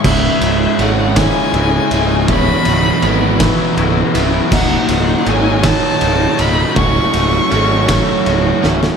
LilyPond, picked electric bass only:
\new Staff \with { instrumentName = "Picked electric bass" } { \clef bass \time 6/8 \key cis \minor \tempo 4. = 54 cis,,8 cis,,8 gis,,4 cis,,8 cis,,8 | cis,,8 cis,,8 gis,,4 cis,,8 cis,,8 | cis,,8 cis,,8 gis,,4 cis,,8 cis,,8 | cis,,8 cis,,8 gis,,4 cis,,8 cis,,8 | }